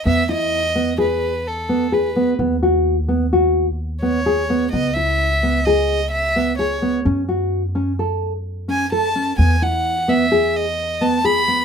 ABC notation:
X:1
M:5/4
L:1/16
Q:1/4=129
K:E
V:1 name="Violin"
e2 d6 B4 A4 B3 z | z12 z2 c6 | d2 e6 d4 e4 c3 z | z12 z2 g2 a4 |
g2 f4 e4 d4 a2 b4 |]
V:2 name="Nylon-string guitar"
B,2 E4 B,2 G4 z2 B,2 G2 B,2 | B,2 F4 B,2 F4 z2 B,2 G2 B,2 | B,2 E4 B,2 G4 z2 B,2 G2 B,2 | C2 F4 C2 A4 z2 C2 A2 C2 |
B,2 E4 B,2 G4 z2 B,2 G2 B,2 |]
V:3 name="Upright bass" clef=bass
E,,16- E,,4 | D,,16- D,,4 | C,,16- C,,4 | F,,16- F,,4 |
E,,16- E,,4 |]